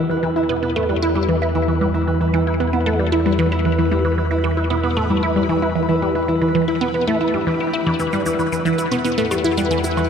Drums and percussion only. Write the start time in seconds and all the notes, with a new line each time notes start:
7.99 cabasa
8.13 cabasa
8.26 cabasa
8.39 cabasa
8.52 cabasa
8.66 cabasa
8.78 cabasa
8.92 cabasa, low woodblock
9.05 cabasa
9.18 cabasa
9.31 cabasa, low woodblock
9.44 cabasa
9.57 cabasa
9.71 cabasa
9.84 cabasa
9.97 cabasa, low woodblock